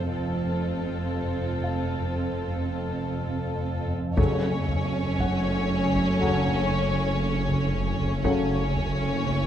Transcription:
0, 0, Header, 1, 12, 480
1, 0, Start_track
1, 0, Key_signature, 3, "minor"
1, 0, Tempo, 1016949
1, 51, Time_signature, 4, 2, 24, 8
1, 4468, End_track
2, 0, Start_track
2, 0, Title_t, "Grand piano"
2, 0, Program_c, 0, 0
2, 0, Control_c, 0, 64, 127
2, 772, Note_on_c, 0, 77, 31
2, 1952, Note_off_c, 0, 77, 0
2, 1979, Control_c, 0, 64, 0
2, 2061, Control_c, 0, 64, 127
2, 2456, Note_on_c, 0, 78, 39
2, 3874, Note_off_c, 0, 78, 0
2, 4468, End_track
3, 0, Start_track
3, 0, Title_t, "Violin section"
3, 0, Program_c, 1, 48
3, 47, Note_on_c, 1, 69, 35
3, 1855, Note_off_c, 1, 69, 0
3, 1968, Note_on_c, 1, 73, 46
3, 3870, Note_off_c, 1, 73, 0
3, 3885, Note_on_c, 1, 73, 47
3, 4468, Note_off_c, 1, 73, 0
3, 4468, End_track
4, 0, Start_track
4, 0, Title_t, "French horn section"
4, 0, Program_c, 2, 60
4, 1968, Note_on_c, 2, 69, 51
4, 1970, Note_on_c, 2, 61, 50
4, 2154, Note_off_c, 2, 69, 0
4, 2156, Note_off_c, 2, 61, 0
4, 2931, Note_on_c, 2, 61, 51
4, 2932, Note_on_c, 2, 69, 48
4, 3116, Note_off_c, 2, 61, 0
4, 3116, Note_off_c, 2, 69, 0
4, 3892, Note_on_c, 2, 61, 45
4, 3894, Note_on_c, 2, 69, 53
4, 4077, Note_off_c, 2, 61, 0
4, 4078, Note_off_c, 2, 69, 0
4, 4468, End_track
5, 0, Start_track
5, 0, Title_t, "Violin section"
5, 0, Program_c, 3, 48
5, 1971, Note_on_c, 3, 61, 53
5, 3872, Note_off_c, 3, 61, 0
5, 3889, Note_on_c, 3, 61, 50
5, 4468, Note_off_c, 3, 61, 0
5, 4468, End_track
6, 0, Start_track
6, 0, Title_t, "Viola section"
6, 0, Program_c, 4, 48
6, 50, Note_on_c, 4, 60, 39
6, 50, Note_on_c, 4, 65, 40
6, 1857, Note_off_c, 4, 60, 0
6, 1857, Note_off_c, 4, 65, 0
6, 1972, Note_on_c, 4, 57, 49
6, 3872, Note_off_c, 4, 57, 0
6, 3893, Note_on_c, 4, 57, 52
6, 4468, Note_off_c, 4, 57, 0
6, 4468, End_track
7, 0, Start_track
7, 0, Title_t, "Trombone section"
7, 0, Program_c, 5, 61
7, 1969, Note_on_c, 5, 49, 52
7, 1969, Note_on_c, 5, 54, 51
7, 2155, Note_off_c, 5, 49, 0
7, 2155, Note_off_c, 5, 54, 0
7, 2928, Note_on_c, 5, 54, 51
7, 2930, Note_on_c, 5, 49, 48
7, 3114, Note_off_c, 5, 54, 0
7, 3116, Note_off_c, 5, 49, 0
7, 3892, Note_on_c, 5, 54, 47
7, 3893, Note_on_c, 5, 49, 52
7, 4077, Note_off_c, 5, 49, 0
7, 4077, Note_off_c, 5, 54, 0
7, 4468, End_track
8, 0, Start_track
8, 0, Title_t, "Cello section"
8, 0, Program_c, 6, 48
8, 50, Note_on_c, 6, 41, 38
8, 1857, Note_off_c, 6, 41, 0
8, 1970, Note_on_c, 6, 42, 49
8, 3871, Note_off_c, 6, 42, 0
8, 3890, Note_on_c, 6, 42, 47
8, 4468, Note_off_c, 6, 42, 0
8, 4468, End_track
9, 0, Start_track
9, 0, Title_t, "Timpani"
9, 0, Program_c, 7, 47
9, 1968, Note_on_c, 7, 42, 65
9, 2670, Note_off_c, 7, 42, 0
9, 4468, End_track
10, 0, Start_track
10, 0, Title_t, "Double bass section"
10, 0, Program_c, 8, 48
10, 51, Note_on_c, 8, 29, 42
10, 1857, Note_off_c, 8, 29, 0
10, 1970, Note_on_c, 8, 30, 55
10, 3871, Note_off_c, 8, 30, 0
10, 3891, Note_on_c, 8, 30, 48
10, 4468, Note_off_c, 8, 30, 0
10, 4468, End_track
11, 0, Start_track
11, 0, Title_t, "Synth drone"
11, 0, Program_c, 10, 95
11, 43, Note_on_c, 10, 41, 62
11, 1948, Note_off_c, 10, 41, 0
11, 1966, Note_on_c, 10, 30, 81
11, 3869, Note_off_c, 10, 30, 0
11, 3884, Note_on_c, 10, 30, 75
11, 4468, Note_off_c, 10, 30, 0
11, 4468, End_track
12, 0, Start_track
12, 0, Title_t, "Taiko and cinematic ensemble drums"
12, 1970, Note_on_c, 9, 41, 102
12, 2017, Note_off_c, 9, 41, 0
12, 2212, Note_on_c, 9, 43, 50
12, 2259, Note_off_c, 9, 43, 0
12, 2451, Note_on_c, 9, 41, 70
12, 2498, Note_off_c, 9, 41, 0
12, 2812, Note_on_c, 9, 41, 66
12, 2859, Note_off_c, 9, 41, 0
12, 2933, Note_on_c, 9, 43, 51
12, 2980, Note_off_c, 9, 43, 0
12, 3054, Note_on_c, 9, 43, 43
12, 3101, Note_off_c, 9, 43, 0
12, 3532, Note_on_c, 9, 41, 65
12, 3579, Note_off_c, 9, 41, 0
12, 3774, Note_on_c, 9, 43, 42
12, 3821, Note_off_c, 9, 43, 0
12, 3891, Note_on_c, 9, 41, 95
12, 3938, Note_off_c, 9, 41, 0
12, 4132, Note_on_c, 9, 43, 47
12, 4180, Note_off_c, 9, 43, 0
12, 4371, Note_on_c, 9, 41, 70
12, 4418, Note_off_c, 9, 41, 0
12, 4468, End_track
0, 0, End_of_file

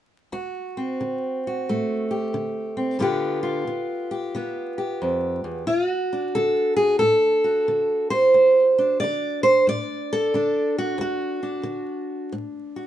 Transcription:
0, 0, Header, 1, 2, 480
1, 0, Start_track
1, 0, Tempo, 669643
1, 234, Time_signature, 4, 2, 24, 8
1, 4074, Tempo, 663717
1, 9270, End_track
2, 0, Start_track
2, 0, Title_t, "Steel-string acoustic guitar"
2, 0, Program_c, 0, 25
2, 232, Note_on_c, 0, 38, 66
2, 235, Note_on_c, 0, 66, 61
2, 553, Note_on_c, 0, 60, 51
2, 679, Note_off_c, 0, 38, 0
2, 721, Note_on_c, 0, 50, 56
2, 1023, Note_off_c, 0, 66, 0
2, 1054, Note_on_c, 0, 66, 48
2, 1164, Note_off_c, 0, 50, 0
2, 1214, Note_on_c, 0, 57, 51
2, 1217, Note_on_c, 0, 45, 55
2, 1508, Note_off_c, 0, 66, 0
2, 1511, Note_on_c, 0, 67, 51
2, 1653, Note_off_c, 0, 45, 0
2, 1677, Note_on_c, 0, 50, 62
2, 1976, Note_off_c, 0, 60, 0
2, 1985, Note_on_c, 0, 60, 50
2, 2123, Note_off_c, 0, 50, 0
2, 2136, Note_off_c, 0, 60, 0
2, 2140, Note_off_c, 0, 67, 0
2, 2142, Note_on_c, 0, 43, 66
2, 2145, Note_off_c, 0, 57, 0
2, 2147, Note_on_c, 0, 50, 59
2, 2151, Note_on_c, 0, 59, 57
2, 2153, Note_on_c, 0, 65, 56
2, 2166, Note_on_c, 0, 67, 69
2, 2448, Note_off_c, 0, 65, 0
2, 2457, Note_on_c, 0, 65, 56
2, 2595, Note_off_c, 0, 43, 0
2, 2625, Note_off_c, 0, 50, 0
2, 2633, Note_on_c, 0, 50, 62
2, 2938, Note_off_c, 0, 67, 0
2, 2946, Note_on_c, 0, 67, 54
2, 3079, Note_off_c, 0, 50, 0
2, 3112, Note_off_c, 0, 59, 0
2, 3115, Note_on_c, 0, 50, 58
2, 3123, Note_on_c, 0, 59, 49
2, 3417, Note_off_c, 0, 67, 0
2, 3425, Note_on_c, 0, 67, 46
2, 3559, Note_off_c, 0, 50, 0
2, 3595, Note_on_c, 0, 41, 60
2, 3897, Note_off_c, 0, 41, 0
2, 3900, Note_on_c, 0, 40, 56
2, 4048, Note_off_c, 0, 65, 0
2, 4053, Note_off_c, 0, 67, 0
2, 4055, Note_off_c, 0, 59, 0
2, 4064, Note_on_c, 0, 65, 85
2, 4072, Note_off_c, 0, 40, 0
2, 4076, Note_on_c, 0, 38, 72
2, 4208, Note_off_c, 0, 65, 0
2, 4208, Note_on_c, 0, 66, 85
2, 4395, Note_on_c, 0, 62, 43
2, 4521, Note_off_c, 0, 38, 0
2, 4555, Note_on_c, 0, 69, 87
2, 4566, Note_on_c, 0, 50, 62
2, 4853, Note_off_c, 0, 69, 0
2, 4855, Note_on_c, 0, 68, 83
2, 5006, Note_off_c, 0, 50, 0
2, 5015, Note_off_c, 0, 68, 0
2, 5018, Note_on_c, 0, 69, 91
2, 5030, Note_off_c, 0, 66, 0
2, 5034, Note_on_c, 0, 45, 56
2, 5346, Note_on_c, 0, 66, 48
2, 5480, Note_off_c, 0, 45, 0
2, 5518, Note_on_c, 0, 50, 65
2, 5814, Note_off_c, 0, 69, 0
2, 5824, Note_on_c, 0, 72, 105
2, 5962, Note_off_c, 0, 50, 0
2, 5996, Note_on_c, 0, 38, 66
2, 6313, Note_off_c, 0, 62, 0
2, 6316, Note_on_c, 0, 62, 49
2, 6441, Note_off_c, 0, 38, 0
2, 6468, Note_off_c, 0, 72, 0
2, 6471, Note_on_c, 0, 74, 106
2, 6500, Note_on_c, 0, 50, 65
2, 6780, Note_off_c, 0, 74, 0
2, 6785, Note_on_c, 0, 72, 105
2, 6806, Note_off_c, 0, 66, 0
2, 6933, Note_off_c, 0, 50, 0
2, 6956, Note_off_c, 0, 72, 0
2, 6958, Note_on_c, 0, 45, 62
2, 6970, Note_on_c, 0, 74, 101
2, 7286, Note_on_c, 0, 69, 97
2, 7402, Note_off_c, 0, 45, 0
2, 7442, Note_on_c, 0, 50, 67
2, 7446, Note_off_c, 0, 62, 0
2, 7449, Note_on_c, 0, 62, 50
2, 7749, Note_off_c, 0, 74, 0
2, 7754, Note_off_c, 0, 69, 0
2, 7763, Note_on_c, 0, 66, 81
2, 7883, Note_off_c, 0, 50, 0
2, 7904, Note_on_c, 0, 38, 74
2, 7917, Note_off_c, 0, 66, 0
2, 7926, Note_on_c, 0, 66, 74
2, 8225, Note_off_c, 0, 62, 0
2, 8228, Note_on_c, 0, 62, 43
2, 8354, Note_off_c, 0, 38, 0
2, 8377, Note_on_c, 0, 50, 62
2, 8831, Note_off_c, 0, 50, 0
2, 8876, Note_on_c, 0, 45, 62
2, 8879, Note_off_c, 0, 66, 0
2, 9193, Note_on_c, 0, 66, 44
2, 9270, Note_off_c, 0, 45, 0
2, 9270, Note_off_c, 0, 62, 0
2, 9270, Note_off_c, 0, 66, 0
2, 9270, End_track
0, 0, End_of_file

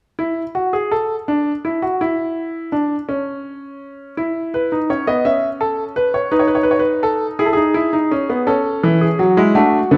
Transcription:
0, 0, Header, 1, 2, 480
1, 0, Start_track
1, 0, Key_signature, 3, "major"
1, 0, Tempo, 722022
1, 1335, Time_signature, 6, 3, 24, 8
1, 6631, End_track
2, 0, Start_track
2, 0, Title_t, "Grand piano"
2, 0, Program_c, 0, 0
2, 124, Note_on_c, 0, 64, 62
2, 275, Note_off_c, 0, 64, 0
2, 365, Note_on_c, 0, 66, 60
2, 484, Note_off_c, 0, 66, 0
2, 486, Note_on_c, 0, 68, 61
2, 605, Note_off_c, 0, 68, 0
2, 608, Note_on_c, 0, 69, 67
2, 759, Note_off_c, 0, 69, 0
2, 852, Note_on_c, 0, 62, 65
2, 1002, Note_off_c, 0, 62, 0
2, 1095, Note_on_c, 0, 64, 61
2, 1211, Note_off_c, 0, 64, 0
2, 1212, Note_on_c, 0, 66, 61
2, 1330, Note_off_c, 0, 66, 0
2, 1336, Note_on_c, 0, 64, 68
2, 1802, Note_off_c, 0, 64, 0
2, 1810, Note_on_c, 0, 62, 62
2, 1961, Note_off_c, 0, 62, 0
2, 2052, Note_on_c, 0, 61, 62
2, 2755, Note_off_c, 0, 61, 0
2, 2775, Note_on_c, 0, 64, 56
2, 3019, Note_on_c, 0, 71, 64
2, 3125, Note_off_c, 0, 64, 0
2, 3138, Note_on_c, 0, 63, 54
2, 3166, Note_off_c, 0, 71, 0
2, 3253, Note_off_c, 0, 63, 0
2, 3257, Note_on_c, 0, 61, 56
2, 3258, Note_on_c, 0, 73, 63
2, 3371, Note_off_c, 0, 61, 0
2, 3372, Note_off_c, 0, 73, 0
2, 3373, Note_on_c, 0, 59, 51
2, 3373, Note_on_c, 0, 75, 65
2, 3488, Note_off_c, 0, 59, 0
2, 3488, Note_off_c, 0, 75, 0
2, 3490, Note_on_c, 0, 76, 65
2, 3491, Note_on_c, 0, 61, 55
2, 3637, Note_off_c, 0, 76, 0
2, 3727, Note_on_c, 0, 69, 66
2, 3874, Note_off_c, 0, 69, 0
2, 3963, Note_on_c, 0, 71, 69
2, 4079, Note_off_c, 0, 71, 0
2, 4083, Note_on_c, 0, 73, 68
2, 4180, Note_off_c, 0, 61, 0
2, 4198, Note_off_c, 0, 73, 0
2, 4198, Note_on_c, 0, 71, 62
2, 4199, Note_on_c, 0, 63, 61
2, 4251, Note_on_c, 0, 73, 61
2, 4253, Note_off_c, 0, 71, 0
2, 4304, Note_on_c, 0, 71, 62
2, 4305, Note_off_c, 0, 73, 0
2, 4354, Note_on_c, 0, 73, 61
2, 4358, Note_off_c, 0, 71, 0
2, 4409, Note_on_c, 0, 71, 68
2, 4410, Note_off_c, 0, 73, 0
2, 4460, Note_on_c, 0, 73, 61
2, 4463, Note_off_c, 0, 71, 0
2, 4516, Note_off_c, 0, 73, 0
2, 4516, Note_on_c, 0, 71, 70
2, 4672, Note_off_c, 0, 71, 0
2, 4673, Note_on_c, 0, 69, 69
2, 4823, Note_off_c, 0, 69, 0
2, 4893, Note_off_c, 0, 63, 0
2, 4913, Note_on_c, 0, 68, 73
2, 4914, Note_on_c, 0, 64, 61
2, 4960, Note_off_c, 0, 68, 0
2, 4960, Note_on_c, 0, 69, 59
2, 5006, Note_on_c, 0, 68, 72
2, 5007, Note_off_c, 0, 69, 0
2, 5030, Note_on_c, 0, 63, 58
2, 5031, Note_off_c, 0, 64, 0
2, 5148, Note_on_c, 0, 64, 64
2, 5150, Note_off_c, 0, 63, 0
2, 5269, Note_off_c, 0, 64, 0
2, 5272, Note_on_c, 0, 63, 59
2, 5391, Note_off_c, 0, 63, 0
2, 5395, Note_on_c, 0, 61, 64
2, 5513, Note_off_c, 0, 61, 0
2, 5515, Note_on_c, 0, 59, 60
2, 5618, Note_off_c, 0, 68, 0
2, 5630, Note_on_c, 0, 61, 68
2, 5631, Note_on_c, 0, 69, 70
2, 5633, Note_off_c, 0, 59, 0
2, 5873, Note_on_c, 0, 52, 79
2, 5984, Note_off_c, 0, 69, 0
2, 5991, Note_on_c, 0, 68, 60
2, 6024, Note_off_c, 0, 52, 0
2, 6110, Note_on_c, 0, 66, 61
2, 6111, Note_off_c, 0, 68, 0
2, 6111, Note_on_c, 0, 54, 76
2, 6229, Note_on_c, 0, 64, 61
2, 6231, Note_off_c, 0, 54, 0
2, 6231, Note_off_c, 0, 66, 0
2, 6231, Note_on_c, 0, 56, 78
2, 6333, Note_off_c, 0, 61, 0
2, 6349, Note_on_c, 0, 57, 79
2, 6349, Note_on_c, 0, 62, 63
2, 6349, Note_on_c, 0, 66, 67
2, 6351, Note_off_c, 0, 56, 0
2, 6351, Note_off_c, 0, 64, 0
2, 6502, Note_off_c, 0, 57, 0
2, 6502, Note_off_c, 0, 62, 0
2, 6589, Note_on_c, 0, 59, 66
2, 6590, Note_on_c, 0, 50, 78
2, 6631, Note_off_c, 0, 50, 0
2, 6631, Note_off_c, 0, 59, 0
2, 6631, Note_off_c, 0, 66, 0
2, 6631, End_track
0, 0, End_of_file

